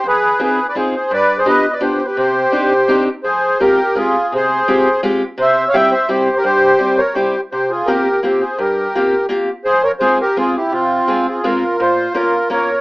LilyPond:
<<
  \new Staff \with { instrumentName = "Accordion" } { \time 3/4 \key c \minor \tempo 4 = 169 <aes' b'>4 <aes' b'>8. <b' d''>16 <aes' c''>8 <aes' c''>8 | <b' d''>8. <aes' c''>16 <b' ees''>8. <b' d''>16 \tuplet 3/2 { <g' c''>4 <g' b'>8 } | <g' c''>2~ <g' c''>8 r8 | \key f \minor <aes' c''>4 <g' bes'>4 <f' aes'>4 |
<aes' c''>2 r4 | <c'' e''>8. <des'' f''>16 <e'' g''>8 <c'' e''>8 <g' c''>8. <g' bes'>16 | <g' c''>4. <bes' des''>8 <g' c''>8. r16 | <g' c''>8 <f' aes'>8 <g' bes'>4 <c' g'>8 <aes' c''>8 |
<g' bes'>2 r4 | <aes' c''>8 <bes' des''>8 <aes' c''>8 <g' bes'>8 <f' aes'>8 <e' g'>8 | <c' f'>4. <f' aes'>8 <f' bes'>4 | \key bes \minor <f' c''>4 <f' bes'>4 <bes' des''>4 | }
  \new Staff \with { instrumentName = "Steel-string acoustic guitar" } { \time 3/4 \key c \minor f,4 <c' ees' f' aes'>8 r8 <c' ees' f' aes'>8 r8 | g,4 <b d' f' g'>8 r8 <b d' f' g'>8 r8 | c4 <c' d' ees' g'>8 r8 <c' d' ees' g'>8 r8 | \key f \minor f,4 <aes c' f' g'>8 r8 <aes c' f' g'>8 r8 |
c4 <aes c' f' g'>8 r8 <aes c' f' g'>8 r8 | c4 <g c' e' g'>8 r8 <g c' e' g'>8 r8 | g,4 <g c' e' g'>8 r8 <g c' e' g'>8 r8 | c4 <bes c' f' g'>8 r8 <bes c' f' g'>8 r8 |
g,4 <bes c' f' g'>8 r8 <bes c' f' g'>8 r8 | f,4 <aes c' f' aes'>8 r8 <aes c' f' aes'>8 r8 | c4 <aes c' f' aes'>8 r8 <aes c' f' aes'>8 r8 | \key bes \minor bes,4 <bes des' f' bes'>8 r8 <bes des' f' bes'>8 r8 | }
>>